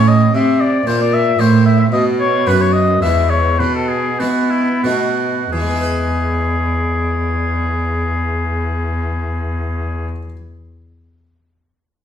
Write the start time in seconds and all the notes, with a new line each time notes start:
Already playing: A2 A3 C#4 E4
0.08 D#5
0.34 C3 E5
0.60 D5
0.86 A#2 A#3 E4 C5
1.01 D5
1.14 E5
1.39 A2 A#3 E4 C5
1.66 E5
1.80 E5
1.92 B2 D#5
2.20 C#5
2.46 F#2 B3 F#4 B4
2.61 C#5
2.73 D#5
3.02 E2 G#3 B3 E4 E5
3.30 C#5
3.59 B2 B4
3.74 A4
3.88 G#4
4.19 G#3 B3 E4 F#4
4.50 E4
4.83 B2 A3 B3 D#4 F#4
5.51 E2 E3 G#4
5.60 G#3
5.67 B3
5.74 E4
5.81 B4